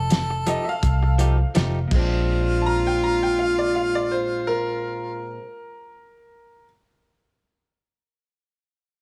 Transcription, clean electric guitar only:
0.10 muted clean electric guitar stroke
0.30 muted clean electric guitar stroke
0.47 F3 A3 D#4 G4
0.67 muted clean electric guitar stroke
1.03 muted clean electric guitar stroke
1.18 F3 A3 D#4 G4
1.38 muted clean electric guitar stroke
1.55 F3 A3 D#4 G4
1.88 A#2
1.92 G#3 C4
1.99 D4

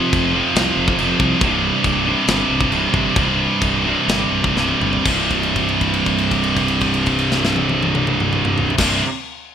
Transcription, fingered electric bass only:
0.12 F1
0.55 C2
0.77 F1
0.98 F1
1.20 C2
1.41 C1
1.84 C1
2.28 G1
2.50 C1
2.72 C1
2.94 G1
3.16 C1
3.62 C1
4.08 G1
4.32 C1
4.56 C1
4.81 G1
5.05 C1
8.78 C1

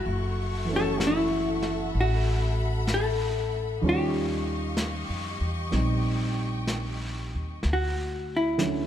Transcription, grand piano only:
0.65 E3
0.69 A3 C#4
0.76 F#4
3.81 D#3 G3 C#4
3.86 F4
5.71 G3 C4 D#4
8.58 D3 F#3 C#4
8.63 E4

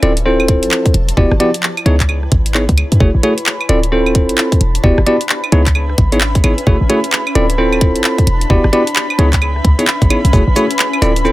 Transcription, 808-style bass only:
0.03 D1
0.63 A1
0.94 E1
1.17 E1
1.31 G1
1.86 C#2
2.32 G#1
2.69 C#2
2.92 F#2
3.00 F#1
3.15 A1
3.69 D1
4.29 A1
4.61 E1
4.84 E1
4.98 G1
5.52 C#2
5.98 G#1
6.44 G#1
6.67 F#1
6.81 A1
7.35 D1
7.96 A1
8.27 E1
8.50 E1
8.64 G1
9.19 C#2
9.64 C#2
10.02 G#1
10.25 B1
10.33 F#1
10.47 A1
11.02 D1

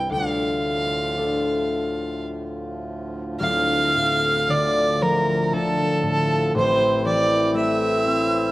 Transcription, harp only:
Already playing: C2 C4 E4 G4
0.10 D2
1.17 D4 F4 A4
3.40 D1 D2
3.95 A2
4.48 D3
5.01 F3
5.53 D3
6.03 A2
6.55 A1 A2
7.05 E3
7.54 A3
8.05 C4

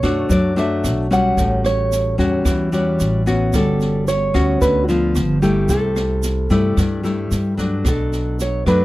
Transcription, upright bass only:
0.03 F#2
0.30 F#2
0.84 B1
1.37 A1
2.19 E2
2.45 E2
3.00 A1
3.53 G1
4.34 D2
4.62 D2
5.16 G1
5.69 C2
6.50 G2
6.77 G2
7.31 G2
7.85 B1
8.66 F#2

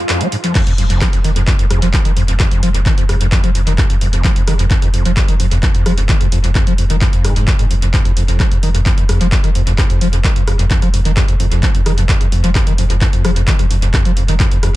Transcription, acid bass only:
0.09 F2
0.21 G#3
0.32 G#2
0.44 F3
0.55 F2
0.67 F2
0.78 F2
0.90 F2
1.01 F3
1.13 F2
1.24 D#3
1.36 F2
1.47 F2
1.59 F2
1.70 F2
1.82 F3
1.93 F2
2.05 D#3
2.17 F2
2.28 F2
2.40 F2
2.51 F2
2.63 F3
2.74 F2
2.86 D#3
2.98 F2
3.09 F2
3.21 F2
3.32 F2
3.44 F3
3.55 F2
3.67 D#3
3.78 F2
3.90 F2
4.01 F2
4.13 F2
4.24 F3
4.36 F2
4.48 D#3
4.59 F2
4.71 F2
4.82 F2
4.94 F2
5.05 F3
5.17 F2
5.28 D#3
5.40 F2
5.52 F2
5.63 F2
5.75 F2
5.86 F3
5.98 F2
6.09 D#3
6.21 F2
6.32 F2
6.44 F2
6.55 F2
6.67 F3
6.79 F2
6.90 D#3
7.02 F2
7.13 F2
7.25 G#2
7.36 G#2
7.48 F2
7.59 G#2
7.71 F2
7.82 F2
7.94 F2
8.05 F2
8.17 F2
8.28 F2
8.40 F3
8.52 F2
8.63 D#3
8.75 F2
8.86 F2
8.98 F2
9.09 F2
9.21 F3
9.32 F2
9.44 D#3
9.55 F2
9.67 F2
9.78 F2
9.90 F2
10.01 F3
10.13 F2
10.24 D#3
10.36 F2
10.47 F2
10.59 F2
10.71 F2
10.82 F3
10.94 F2
11.05 D#3
11.17 F2
11.28 F2
11.40 F2
11.52 F2
11.63 F3
11.75 F2
11.86 D#3
11.98 F2
12.09 F2
12.21 F2
12.32 F2
12.44 F3
12.55 F2
12.67 D#3
12.78 F2
12.90 F2
13.01 F2
13.13 F2
13.24 F3
13.36 F2
13.48 D#3
13.59 F2
13.71 F2
13.82 F2
13.94 F2
14.06 F3
14.17 F2
14.29 D#3
14.40 F2
14.52 F2
14.63 F2

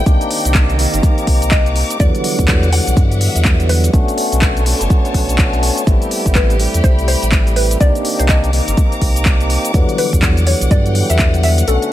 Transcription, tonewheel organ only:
0.06 A#3 C4 D4 D#4 G4
0.78 A#3 C4 D#4 G4
1.99 D3 E3 F#3 G3 B3
2.72 D3 E3 F#3 G3 B3
3.93 A3 B3 C#4 D4 F#4
4.65 A3 B3 C#4 D4 F#4
5.86 G3 A3 B3 C4 E4
6.59 G3 A3 C4 E4
7.80 A#3 C4 D4 D#4 G4
8.52 A#3 C4 D#4 G4
9.73 D3 E3 F#3 G3 B3
10.46 D3 E3 F#3 G3 B3
11.67 A3 B3 C#4 D4 F#4

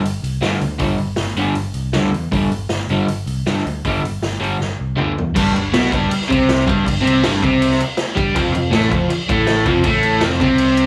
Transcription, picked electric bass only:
0.03 G1
0.22 C2
0.41 G2
0.62 D2
0.80 G1
0.98 G1
1.17 G1
1.37 G1
1.55 G1
1.74 C2
1.92 D2
2.12 E2
2.32 G1
2.50 G1
2.70 G1
2.89 G1
3.08 G1
3.26 C2
3.46 G2
3.66 D2
3.84 G1
4.03 G1
4.22 G1
4.41 G1
4.60 G1
4.80 C2
4.97 D2
5.17 E2
5.36 G1
5.54 G1
5.74 B1
5.92 G1
6.30 C2
6.67 G1
6.87 G1
7.05 C2
7.26 G1
7.43 C2
7.81 muted picked electric bass stroke
8.17 G2
8.35 F1
8.55 F1
8.72 A1
8.92 F1
9.09 muted picked electric bass stroke
9.29 A1
9.65 F1
9.85 A1
10.21 F1
10.40 C2

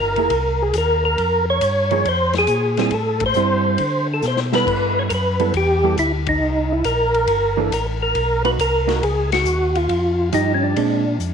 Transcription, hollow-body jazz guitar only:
0.18 A#3 E4 G#4
1.91 F3 A#3 D#4 G#4
2.78 G3 C4 E4
3.36 G3 C4 E4
4.53 G3 B3 E4 A4
5.40 G3 B3 E4 A4
5.84 G3 B3 E4 A4
7.57 E3 A#3 D4
8.45 A#3 D#4 F#4
8.87 A#3 D#4 F#4
10.33 F3 D#4 G4
10.77 G#3 C4 D4

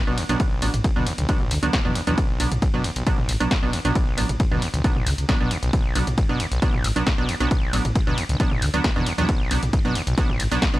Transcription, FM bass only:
0.07 B1
0.29 B1
0.62 A1
0.74 A1
0.96 D2
1.18 D2
1.51 D2
1.63 D2
1.85 E2
2.07 E2
2.40 B1
2.52 B1
2.74 F#1
2.96 B1
3.29 A1
3.41 B1
3.63 B1
3.85 B1
4.18 A1
4.29 A1
4.52 D2
4.74 D2
5.07 C#2
5.18 C#2
5.41 B1
5.63 B1
5.96 B1
6.07 B1
6.29 F#1
6.52 B1
6.84 A1
6.96 B1
7.18 B1
7.40 B1
7.73 A1
7.85 A1
8.07 D2
8.29 D2
8.62 D2
8.74 D2
8.96 E2
9.18 E2
9.51 B1
9.63 B1
9.85 F#1
10.07 B1
10.40 A1
10.52 B1
10.74 B1

